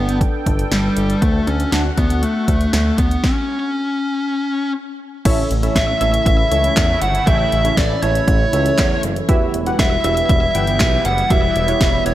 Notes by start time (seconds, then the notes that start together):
Already playing: G1 B3 D4 A4 B4 G5
0.09 closed hi-hat
0.21 kick, closed hi-hat
0.46 G1, kick, closed hi-hat
0.59 closed hi-hat
0.72 G1 G3, snare, closed hi-hat
0.97 G1, closed hi-hat
1.10 closed hi-hat
1.22 D2 A3 F#4 F#5, kick, closed hi-hat
1.47 D2 C#4, closed hi-hat
1.60 closed hi-hat
1.72 D2 D4, snare, closed hi-hat
1.98 D2 B3, kick, closed hi-hat
2.10 closed hi-hat
2.23 A3, closed hi-hat
2.48 D2, kick, closed hi-hat
2.61 closed hi-hat
2.73 D2 A3, snare, closed hi-hat
2.98 D2 B3, kick, closed hi-hat
3.11 closed hi-hat
3.24 C#4, kick, snare
5.25 A1 C#3 E3 A3 C#4 E4 A4 C#5 E5, kick, closed hi-hat, crash
5.51 A1, closed hi-hat
5.63 C#4 E4 A4 C#5 E5, closed hi-hat
5.76 A1 E5, kick, snare, closed hi-hat
6.01 A1 C#4 E4 A4 C#5 E5, closed hi-hat
6.14 closed hi-hat
6.26 A1 E5, kick, closed hi-hat
6.51 C#2 C#4 E4 A4 C#5 E5, closed hi-hat
6.64 closed hi-hat
6.77 E2, kick, snare, clap, closed hi-hat
7.02 G1 F#5, closed hi-hat
7.15 closed hi-hat
7.27 A1 C#4 E4 A4 C#5 E5 G5, kick, closed hi-hat
7.52 A1, closed hi-hat
7.65 C#4 E4 A4 C#5 E5, closed hi-hat
7.77 A1 D5, kick, snare, closed hi-hat
8.03 A1 C#4 E4 A4 C#5 E5, closed hi-hat
8.15 closed hi-hat
8.28 A1, kick, closed hi-hat
8.53 C#2 C#4 E4 A4 C#5 E5, closed hi-hat
8.66 closed hi-hat
8.78 E2, kick, snare, clap, closed hi-hat
9.03 F#1, closed hi-hat
9.16 closed hi-hat
9.29 E1 G3 B3 E4 F#4 G4 B4 E5, kick, closed hi-hat
9.54 E1, closed hi-hat
9.66 E4 F#4 G4 B4 F#5, closed hi-hat
9.79 E1 E5, kick, snare, closed hi-hat
10.04 E1 E4 F#4 G4 B4 E5, closed hi-hat
10.17 closed hi-hat
10.29 E1 E5, kick, closed hi-hat
10.55 G1 E4 G4 B4 F#5 G5, closed hi-hat
10.67 closed hi-hat
10.80 B1, kick, snare, clap, closed hi-hat
11.05 F#1 F#5, closed hi-hat
11.18 closed hi-hat
11.30 E1 E4 F#4 G4 B4 E5, kick, closed hi-hat
11.56 E1, closed hi-hat
11.68 E4 F#4 G4 B4 C#5, closed hi-hat
11.81 E1, kick, snare, closed hi-hat
12.06 E1 E4 F#4 G4 B4 C#5 E5, closed hi-hat